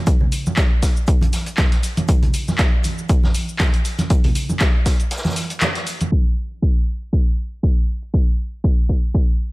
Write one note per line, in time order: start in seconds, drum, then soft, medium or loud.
0.07 kick loud
0.07 closed hi-hat medium
0.07 shaker medium
0.07 shaker soft
0.21 low conga medium
0.32 open hi-hat loud
0.32 shaker medium
0.46 high conga medium
0.46 shaker soft
0.57 kick loud
0.57 snare loud
0.57 clap loud
0.57 closed hi-hat medium
0.57 shaker medium
0.57 shaker soft
0.82 kick medium
0.82 snare soft
0.82 open hi-hat loud
0.82 shaker medium
0.97 shaker soft
1.07 kick loud
1.07 closed hi-hat medium
1.07 shaker medium
1.07 shaker soft
1.21 closed hi-hat soft
1.21 high conga medium
1.33 snare medium
1.33 open hi-hat loud
1.33 shaker medium
1.46 closed hi-hat soft
1.46 shaker soft
1.58 kick loud
1.58 snare loud
1.58 clap loud
1.58 closed hi-hat medium
1.58 high conga medium
1.58 shaker medium
1.58 shaker soft
1.72 snare soft
1.72 closed hi-hat soft
1.83 open hi-hat loud
1.83 shaker medium
1.97 closed hi-hat soft
1.97 high conga medium
1.97 shaker soft
2.08 kick loud
2.08 closed hi-hat medium
2.08 shaker medium
2.08 shaker soft
2.22 closed hi-hat soft
2.22 low conga medium
2.33 open hi-hat medium
2.33 shaker medium
2.48 snare soft
2.48 high conga medium
2.48 shaker soft
2.59 kick loud
2.59 snare loud
2.59 clap loud
2.59 closed hi-hat medium
2.59 shaker medium
2.59 shaker soft
2.84 open hi-hat loud
2.84 high conga medium
2.84 shaker medium
2.98 shaker soft
3.09 kick loud
3.09 closed hi-hat medium
3.09 shaker medium
3.09 shaker soft
3.23 snare medium
3.23 high conga medium
3.35 open hi-hat loud
3.35 shaker medium
3.49 shaker soft
3.59 kick loud
3.59 snare loud
3.59 clap loud
3.59 closed hi-hat medium
3.59 high conga medium
3.59 shaker medium
3.59 shaker soft
3.74 closed hi-hat medium
3.85 open hi-hat loud
3.85 shaker medium
3.98 snare soft
3.98 closed hi-hat soft
3.98 high conga medium
3.98 shaker soft
4.10 kick loud
4.10 closed hi-hat medium
4.10 shaker soft
4.10 shaker medium
4.24 open hi-hat medium
4.24 low conga loud
4.35 open hi-hat loud
4.35 shaker medium
4.49 high conga medium
4.49 shaker soft
4.60 kick loud
4.60 snare loud
4.60 clap loud
4.60 closed hi-hat medium
4.60 shaker medium
4.60 shaker soft
4.85 kick medium
4.85 snare medium
4.85 open hi-hat loud
4.85 shaker medium
5.00 closed hi-hat soft
5.00 shaker soft
5.11 snare medium
5.11 closed hi-hat medium
5.11 shaker soft
5.11 shaker medium
5.17 snare medium
5.17 shaker medium
5.25 snare medium
5.25 high conga medium
5.25 shaker medium
5.30 snare medium
5.30 shaker medium
5.35 snare medium
5.35 open hi-hat loud
5.35 shaker medium
5.50 closed hi-hat soft
5.50 shaker soft
5.61 snare loud
5.61 clap loud
5.61 closed hi-hat medium
5.61 high conga medium
5.61 shaker medium
5.61 shaker soft
5.75 snare soft
5.75 closed hi-hat medium
5.87 open hi-hat loud
5.87 shaker medium
6.01 closed hi-hat soft
6.01 high conga medium
6.01 shaker soft
6.12 kick loud
6.62 kick loud
6.62 closed hi-hat medium
7.13 kick loud
7.13 closed hi-hat medium
7.63 kick loud
7.63 closed hi-hat medium
7.77 closed hi-hat soft
8.02 closed hi-hat soft
8.14 kick loud
8.14 closed hi-hat medium
8.64 kick loud
8.64 closed hi-hat medium
8.89 kick medium
9.14 kick loud
9.14 closed hi-hat medium